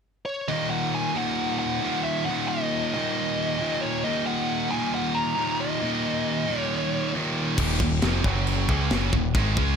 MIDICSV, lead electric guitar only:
0, 0, Header, 1, 2, 480
1, 0, Start_track
1, 0, Key_signature, -6, "minor"
1, 0, Tempo, 442804
1, 535, Time_signature, 4, 2, 24, 8
1, 10581, End_track
2, 0, Start_track
2, 0, Title_t, "Lead electric guitar"
2, 0, Program_c, 0, 29
2, 277, Note_on_c, 0, 73, 67
2, 523, Note_on_c, 0, 75, 73
2, 534, Note_off_c, 0, 73, 0
2, 760, Note_off_c, 0, 75, 0
2, 765, Note_on_c, 0, 78, 76
2, 1018, Note_off_c, 0, 78, 0
2, 1027, Note_on_c, 0, 80, 83
2, 1258, Note_on_c, 0, 78, 71
2, 1268, Note_off_c, 0, 80, 0
2, 1704, Note_off_c, 0, 78, 0
2, 1722, Note_on_c, 0, 78, 73
2, 2211, Note_off_c, 0, 78, 0
2, 2215, Note_on_c, 0, 76, 78
2, 2439, Note_off_c, 0, 76, 0
2, 2443, Note_on_c, 0, 78, 83
2, 2686, Note_off_c, 0, 78, 0
2, 2691, Note_on_c, 0, 75, 85
2, 3140, Note_off_c, 0, 75, 0
2, 3186, Note_on_c, 0, 75, 80
2, 4135, Note_on_c, 0, 73, 77
2, 4171, Note_off_c, 0, 75, 0
2, 4360, Note_off_c, 0, 73, 0
2, 4381, Note_on_c, 0, 75, 85
2, 4603, Note_off_c, 0, 75, 0
2, 4624, Note_on_c, 0, 78, 91
2, 5101, Note_on_c, 0, 80, 83
2, 5116, Note_off_c, 0, 78, 0
2, 5323, Note_off_c, 0, 80, 0
2, 5362, Note_on_c, 0, 78, 94
2, 5579, Note_on_c, 0, 82, 96
2, 5597, Note_off_c, 0, 78, 0
2, 6071, Note_on_c, 0, 75, 79
2, 6074, Note_off_c, 0, 82, 0
2, 7155, Note_off_c, 0, 75, 0
2, 7155, Note_on_c, 0, 73, 79
2, 7702, Note_off_c, 0, 73, 0
2, 10581, End_track
0, 0, End_of_file